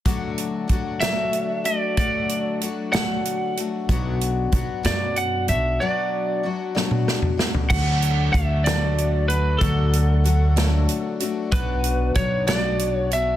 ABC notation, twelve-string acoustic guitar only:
X:1
M:6/8
L:1/8
Q:3/8=63
K:D
V:1 name="Twelve-string acoustic guitar"
[D,F,A,DF]2 [F,A,DF] [D,F,A,DF]2 [A,DF] | [D,F,A,DF]2 [F,A,DF] [D,F,A,DF]2 [A,DF] | [B,,F,B,DF]2 [F,B,DF] [B,,F,B,DF]2 [B,DF] | [B,,F,B,DF]2 [F,B,DF] [B,,F,B,DF]2 [B,DF] |
[D,F,A,DF]2 [F,A,DF] [D,F,A,DF]2 [A,DF] | [D,F,A,DF]2 [F,A,DF] [D,F,A,DF]2 [A,DF] | [B,,F,B,DF]2 [F,B,DF] [B,,F,B,DF]2 [B,DF] |]